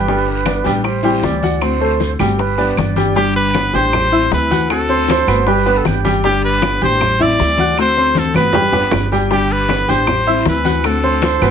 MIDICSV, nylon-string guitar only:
0, 0, Header, 1, 3, 480
1, 0, Start_track
1, 0, Key_signature, 1, "major"
1, 0, Tempo, 384369
1, 101, Time_signature, 4, 2, 24, 8
1, 14371, End_track
2, 0, Start_track
2, 0, Title_t, "Nylon-string guitar"
2, 0, Program_c, 0, 24
2, 97, Note_on_c, 0, 50, 68
2, 101, Note_on_c, 0, 55, 71
2, 105, Note_on_c, 0, 59, 84
2, 114, Note_on_c, 0, 62, 72
2, 121, Note_on_c, 0, 67, 80
2, 786, Note_off_c, 0, 67, 0
2, 794, Note_off_c, 0, 62, 0
2, 801, Note_on_c, 0, 67, 72
2, 804, Note_off_c, 0, 59, 0
2, 809, Note_on_c, 0, 62, 64
2, 811, Note_off_c, 0, 55, 0
2, 812, Note_off_c, 0, 50, 0
2, 819, Note_on_c, 0, 59, 53
2, 826, Note_on_c, 0, 55, 53
2, 1038, Note_off_c, 0, 55, 0
2, 1044, Note_off_c, 0, 67, 0
2, 1048, Note_off_c, 0, 59, 0
2, 1048, Note_off_c, 0, 62, 0
2, 1283, Note_on_c, 0, 64, 72
2, 1297, Note_on_c, 0, 60, 62
2, 1310, Note_on_c, 0, 55, 53
2, 1524, Note_off_c, 0, 55, 0
2, 1525, Note_off_c, 0, 64, 0
2, 1532, Note_off_c, 0, 60, 0
2, 1533, Note_on_c, 0, 52, 45
2, 1539, Note_on_c, 0, 55, 50
2, 1553, Note_on_c, 0, 60, 58
2, 1559, Note_on_c, 0, 64, 58
2, 2010, Note_off_c, 0, 52, 0
2, 2014, Note_off_c, 0, 55, 0
2, 2015, Note_on_c, 0, 50, 67
2, 2018, Note_off_c, 0, 60, 0
2, 2019, Note_on_c, 0, 57, 79
2, 2024, Note_off_c, 0, 64, 0
2, 2033, Note_on_c, 0, 60, 76
2, 2041, Note_on_c, 0, 66, 75
2, 2730, Note_off_c, 0, 66, 0
2, 2733, Note_off_c, 0, 50, 0
2, 2735, Note_off_c, 0, 57, 0
2, 2742, Note_off_c, 0, 60, 0
2, 2744, Note_on_c, 0, 66, 60
2, 2759, Note_on_c, 0, 60, 62
2, 2771, Note_on_c, 0, 57, 52
2, 2978, Note_off_c, 0, 66, 0
2, 2985, Note_off_c, 0, 60, 0
2, 2991, Note_off_c, 0, 57, 0
2, 3223, Note_on_c, 0, 67, 73
2, 3235, Note_on_c, 0, 62, 70
2, 3241, Note_on_c, 0, 59, 61
2, 3252, Note_on_c, 0, 55, 56
2, 3450, Note_off_c, 0, 55, 0
2, 3457, Note_off_c, 0, 67, 0
2, 3462, Note_off_c, 0, 59, 0
2, 3463, Note_off_c, 0, 62, 0
2, 3465, Note_on_c, 0, 55, 51
2, 3477, Note_on_c, 0, 59, 49
2, 3481, Note_on_c, 0, 62, 58
2, 3492, Note_on_c, 0, 67, 53
2, 3939, Note_off_c, 0, 55, 0
2, 3944, Note_off_c, 0, 59, 0
2, 3946, Note_off_c, 0, 62, 0
2, 3947, Note_on_c, 0, 50, 74
2, 3952, Note_off_c, 0, 67, 0
2, 3954, Note_on_c, 0, 55, 75
2, 3963, Note_on_c, 0, 59, 76
2, 3969, Note_on_c, 0, 62, 85
2, 3972, Note_on_c, 0, 67, 79
2, 4647, Note_off_c, 0, 67, 0
2, 4660, Note_off_c, 0, 50, 0
2, 4662, Note_on_c, 0, 67, 66
2, 4663, Note_off_c, 0, 55, 0
2, 4663, Note_off_c, 0, 62, 0
2, 4667, Note_off_c, 0, 59, 0
2, 4678, Note_on_c, 0, 62, 67
2, 4683, Note_on_c, 0, 59, 58
2, 4688, Note_on_c, 0, 55, 57
2, 4897, Note_off_c, 0, 67, 0
2, 4901, Note_off_c, 0, 55, 0
2, 4905, Note_off_c, 0, 62, 0
2, 4908, Note_off_c, 0, 59, 0
2, 5144, Note_on_c, 0, 64, 68
2, 5163, Note_on_c, 0, 60, 62
2, 5168, Note_on_c, 0, 55, 58
2, 5371, Note_off_c, 0, 55, 0
2, 5378, Note_off_c, 0, 64, 0
2, 5378, Note_on_c, 0, 52, 51
2, 5386, Note_on_c, 0, 55, 48
2, 5387, Note_off_c, 0, 60, 0
2, 5400, Note_on_c, 0, 60, 52
2, 5406, Note_on_c, 0, 64, 58
2, 5855, Note_off_c, 0, 52, 0
2, 5859, Note_off_c, 0, 55, 0
2, 5862, Note_on_c, 0, 50, 72
2, 5865, Note_off_c, 0, 60, 0
2, 5868, Note_off_c, 0, 64, 0
2, 5871, Note_on_c, 0, 57, 75
2, 5881, Note_on_c, 0, 60, 73
2, 5888, Note_on_c, 0, 66, 80
2, 6576, Note_off_c, 0, 50, 0
2, 6580, Note_off_c, 0, 66, 0
2, 6581, Note_off_c, 0, 57, 0
2, 6586, Note_off_c, 0, 60, 0
2, 6595, Note_on_c, 0, 66, 66
2, 6608, Note_on_c, 0, 60, 56
2, 6617, Note_on_c, 0, 57, 55
2, 6822, Note_off_c, 0, 66, 0
2, 6829, Note_off_c, 0, 60, 0
2, 6832, Note_off_c, 0, 57, 0
2, 7065, Note_on_c, 0, 67, 64
2, 7075, Note_on_c, 0, 62, 64
2, 7087, Note_on_c, 0, 59, 61
2, 7094, Note_on_c, 0, 55, 53
2, 7297, Note_off_c, 0, 67, 0
2, 7299, Note_off_c, 0, 55, 0
2, 7302, Note_off_c, 0, 62, 0
2, 7308, Note_off_c, 0, 59, 0
2, 7314, Note_on_c, 0, 55, 54
2, 7328, Note_on_c, 0, 59, 56
2, 7329, Note_on_c, 0, 62, 56
2, 7338, Note_on_c, 0, 67, 57
2, 7782, Note_off_c, 0, 55, 0
2, 7788, Note_off_c, 0, 59, 0
2, 7789, Note_off_c, 0, 62, 0
2, 7793, Note_off_c, 0, 67, 0
2, 7800, Note_on_c, 0, 50, 73
2, 7808, Note_on_c, 0, 55, 76
2, 7817, Note_on_c, 0, 59, 84
2, 7818, Note_on_c, 0, 62, 84
2, 7824, Note_on_c, 0, 67, 79
2, 8497, Note_off_c, 0, 67, 0
2, 8504, Note_off_c, 0, 50, 0
2, 8508, Note_off_c, 0, 55, 0
2, 8510, Note_off_c, 0, 62, 0
2, 8512, Note_off_c, 0, 59, 0
2, 8512, Note_on_c, 0, 67, 68
2, 8525, Note_on_c, 0, 62, 63
2, 8530, Note_on_c, 0, 59, 60
2, 8542, Note_on_c, 0, 55, 57
2, 8740, Note_off_c, 0, 67, 0
2, 8744, Note_off_c, 0, 55, 0
2, 8746, Note_off_c, 0, 62, 0
2, 8749, Note_off_c, 0, 59, 0
2, 8987, Note_on_c, 0, 64, 69
2, 8997, Note_on_c, 0, 60, 67
2, 9014, Note_on_c, 0, 55, 58
2, 9217, Note_off_c, 0, 64, 0
2, 9222, Note_off_c, 0, 60, 0
2, 9230, Note_off_c, 0, 55, 0
2, 9236, Note_on_c, 0, 52, 55
2, 9247, Note_on_c, 0, 55, 60
2, 9256, Note_on_c, 0, 60, 54
2, 9259, Note_on_c, 0, 64, 57
2, 9701, Note_off_c, 0, 52, 0
2, 9706, Note_off_c, 0, 55, 0
2, 9707, Note_on_c, 0, 50, 79
2, 9711, Note_off_c, 0, 60, 0
2, 9712, Note_off_c, 0, 64, 0
2, 9717, Note_on_c, 0, 57, 78
2, 9723, Note_on_c, 0, 60, 78
2, 9729, Note_on_c, 0, 66, 90
2, 10411, Note_off_c, 0, 66, 0
2, 10415, Note_off_c, 0, 50, 0
2, 10420, Note_off_c, 0, 57, 0
2, 10424, Note_off_c, 0, 60, 0
2, 10426, Note_on_c, 0, 66, 63
2, 10440, Note_on_c, 0, 60, 63
2, 10451, Note_on_c, 0, 57, 54
2, 10655, Note_off_c, 0, 66, 0
2, 10662, Note_off_c, 0, 60, 0
2, 10668, Note_off_c, 0, 57, 0
2, 10899, Note_on_c, 0, 67, 68
2, 10910, Note_on_c, 0, 62, 70
2, 10919, Note_on_c, 0, 59, 61
2, 10922, Note_on_c, 0, 55, 61
2, 11126, Note_off_c, 0, 55, 0
2, 11131, Note_off_c, 0, 67, 0
2, 11137, Note_off_c, 0, 62, 0
2, 11138, Note_off_c, 0, 59, 0
2, 11141, Note_on_c, 0, 55, 49
2, 11153, Note_on_c, 0, 59, 50
2, 11162, Note_on_c, 0, 62, 55
2, 11170, Note_on_c, 0, 67, 56
2, 11612, Note_off_c, 0, 55, 0
2, 11618, Note_off_c, 0, 59, 0
2, 11622, Note_off_c, 0, 62, 0
2, 11623, Note_on_c, 0, 50, 63
2, 11626, Note_off_c, 0, 67, 0
2, 11631, Note_on_c, 0, 55, 75
2, 11637, Note_on_c, 0, 59, 77
2, 11645, Note_on_c, 0, 62, 74
2, 11646, Note_on_c, 0, 67, 73
2, 12328, Note_off_c, 0, 67, 0
2, 12332, Note_off_c, 0, 50, 0
2, 12336, Note_off_c, 0, 55, 0
2, 12337, Note_off_c, 0, 62, 0
2, 12339, Note_off_c, 0, 59, 0
2, 12343, Note_on_c, 0, 67, 61
2, 12352, Note_on_c, 0, 62, 65
2, 12363, Note_on_c, 0, 59, 65
2, 12371, Note_on_c, 0, 55, 60
2, 12572, Note_off_c, 0, 67, 0
2, 12573, Note_off_c, 0, 55, 0
2, 12576, Note_off_c, 0, 62, 0
2, 12582, Note_off_c, 0, 59, 0
2, 12820, Note_on_c, 0, 64, 68
2, 12835, Note_on_c, 0, 60, 64
2, 12846, Note_on_c, 0, 55, 55
2, 13050, Note_off_c, 0, 64, 0
2, 13056, Note_off_c, 0, 55, 0
2, 13057, Note_off_c, 0, 60, 0
2, 13063, Note_on_c, 0, 52, 56
2, 13071, Note_on_c, 0, 55, 53
2, 13080, Note_on_c, 0, 60, 54
2, 13084, Note_on_c, 0, 64, 58
2, 13531, Note_off_c, 0, 52, 0
2, 13535, Note_off_c, 0, 55, 0
2, 13539, Note_off_c, 0, 60, 0
2, 13539, Note_on_c, 0, 50, 76
2, 13541, Note_off_c, 0, 64, 0
2, 13551, Note_on_c, 0, 57, 75
2, 13563, Note_on_c, 0, 60, 80
2, 13568, Note_on_c, 0, 66, 77
2, 14245, Note_off_c, 0, 66, 0
2, 14248, Note_off_c, 0, 50, 0
2, 14254, Note_off_c, 0, 57, 0
2, 14260, Note_off_c, 0, 60, 0
2, 14260, Note_on_c, 0, 66, 69
2, 14273, Note_on_c, 0, 60, 55
2, 14286, Note_on_c, 0, 57, 58
2, 14371, Note_off_c, 0, 57, 0
2, 14371, Note_off_c, 0, 60, 0
2, 14371, Note_off_c, 0, 66, 0
2, 14371, End_track
3, 0, Start_track
3, 0, Title_t, "Muted nylon-string guitar strokes"
3, 1048, Note_on_c, 9, 29, 60
3, 1173, Note_off_c, 9, 29, 0
3, 2996, Note_on_c, 9, 29, 59
3, 3121, Note_off_c, 9, 29, 0
3, 4908, Note_on_c, 9, 29, 66
3, 5033, Note_off_c, 9, 29, 0
3, 6835, Note_on_c, 9, 29, 63
3, 6960, Note_off_c, 9, 29, 0
3, 8753, Note_on_c, 9, 29, 61
3, 8878, Note_off_c, 9, 29, 0
3, 10667, Note_on_c, 9, 29, 67
3, 10791, Note_off_c, 9, 29, 0
3, 12581, Note_on_c, 9, 29, 69
3, 12706, Note_off_c, 9, 29, 0
3, 14371, End_track
0, 0, End_of_file